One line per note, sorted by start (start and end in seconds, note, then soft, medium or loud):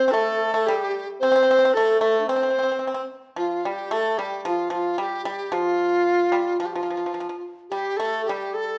0.00 0.14 C4 medium
0.00 0.12 C5 loud
0.08 0.13 C4 medium
0.08 0.68 A4 loud
0.12 0.51 A3 medium
0.12 0.53 A4 medium
0.53 0.66 A3 medium
0.53 0.70 A4 medium
0.66 1.05 G3 medium
0.66 1.07 G4 medium
0.66 1.08 G4 medium
1.19 1.76 C4 medium
1.19 1.28 C4 medium
1.19 1.75 C5 loud
1.32 1.34 C4 medium
1.32 1.42 C4 medium
1.43 1.49 C4 medium
1.51 1.57 C4 medium
1.59 1.64 C4 medium
1.65 1.71 C4 medium
1.73 2.00 A3 medium
1.73 2.00 A4 medium
1.73 2.01 A4 medium
2.01 2.26 A3 medium
2.01 2.25 A4 medium
2.01 2.19 A4 medium
2.20 2.27 D4 soft
2.26 3.09 C4 medium
2.26 2.35 C4 medium
2.26 3.06 C5 medium
2.36 2.42 C4 soft
2.43 2.49 C4 medium
2.50 2.57 C4 soft
2.59 2.62 C4 soft
2.63 2.70 C4 soft
2.72 2.78 C4 soft
2.79 2.86 C4 soft
2.87 2.93 C4 soft
2.94 3.01 C4 soft
3.36 3.62 F3 medium
3.36 3.67 F4 medium
3.65 3.90 G3 medium
3.65 3.94 G4 medium
3.91 4.17 A3 medium
3.91 4.19 A4 medium
4.17 4.43 G3 medium
4.17 4.45 G4 medium
4.45 4.69 F3 medium
4.45 4.71 F4 medium
4.70 4.96 F3 medium
4.70 4.97 F4 medium
4.98 5.23 G3 medium
4.98 5.24 G4 medium
5.25 5.50 G3 medium
5.25 5.54 G4 medium
5.52 6.29 F3 medium
5.52 6.60 F4 loud
6.32 6.58 G3 medium
6.60 6.73 F3 medium
6.60 6.67 F4 medium
6.65 6.75 G4 medium
6.73 6.82 F3 medium
6.73 7.43 F4 medium
6.83 6.89 F3 soft
6.90 6.96 F3 soft
6.97 7.04 F3 soft
7.06 7.12 F3 soft
7.14 7.19 F3 soft
7.20 7.27 F3 soft
7.29 7.35 F3 soft
7.70 7.98 G3 medium
7.70 7.98 G4 medium
7.70 7.97 G4 medium
7.97 8.26 A3 medium
7.97 8.24 A4 medium
7.97 8.30 A4 medium
8.25 8.55 G4 medium
8.25 8.57 G4 medium
8.29 8.78 G3 medium
8.53 8.78 A4 medium